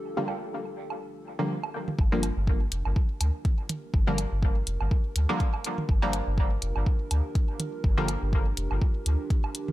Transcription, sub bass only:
X:1
M:4/4
L:1/16
Q:"Swing 16ths" 1/4=123
K:Gm
V:1 name="Sub bass" clef=bass
z16 | G,,,3 G,,,3 F,,, G,,, z2 D,, z4 z | G,,,3 G,,,3 F,,, G,,, z2 D,, z4 z | G,,,3 G,,,3 F,,, G,,, z2 D,, z4 z |
G,,,3 G,,,3 F,,, G,,, z2 D,, z4 z |]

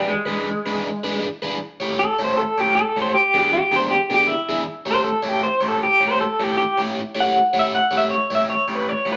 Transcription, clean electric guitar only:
X:1
M:4/4
L:1/8
Q:"Swing" 1/4=157
K:Amix
V:1 name="Clean electric guitar"
^G,6 z2 | z2 A =c A G A c | G G G =c G G E2 | z =c A G c A G c |
A G G z2 f2 e | f e c e c B c B |]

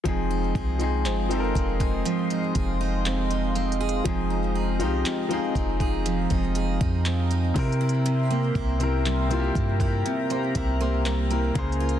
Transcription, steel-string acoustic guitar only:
X:1
M:4/4
L:1/16
Q:1/4=60
K:Fm
V:1 name="Steel-string acoustic guitar"
F, E A E C E C A F, E A E C E C A | F, E A E C E C A F, E A E C E C, =E | C, B, =E B, G, B, G, E C, B, E B, G, B, D, F |]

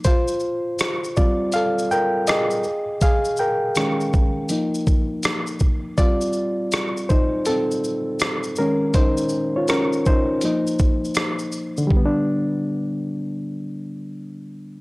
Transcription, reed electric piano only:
X:1
M:4/4
L:1/16
Q:"Swing 16ths" 1/4=81
K:Gm
V:1 name="Reed electric piano"
[Fc]4 z2 d2 [Af]2 [Bg]2 [_Ae]4 | [_Af]2 [Bg]8 z6 | d6 [Ec]2 [CA]6 B2 | [Ec]3 [F_d] [_DB]2 [Ec]6 z4 |
[D,G,=B,D]16 |]
V:2 name="Reed electric piano"
z6 [G,CF]2 z8 | z4 [E,_A,_D]4 [F,B,E]2 z6 | [G,CF]12- [G,CF]2 [E,_A,_D]2 | z8 [F,B,E]2 z6 |
z16 |]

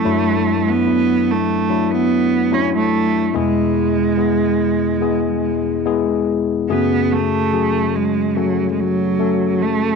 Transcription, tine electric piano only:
X:1
M:4/4
L:1/8
Q:1/4=72
K:F#m
V:1 name="Tine electric piano"
[F,A,DE]2 [F,A,DE]2 [F,A,DE]2 [F,A,DE]2 | [G,B,EG]2 [G,B,EG]2 [G,B,EG]2 [G,B,EG]2 | [A,CFG]2 [F,CFG]2 [A,CFA]2 [A,CFA]2 |]
V:2 name="Tine electric piano" clef=bass
F,,8 | [E,,B,,]8 | [F,,C,]8 |]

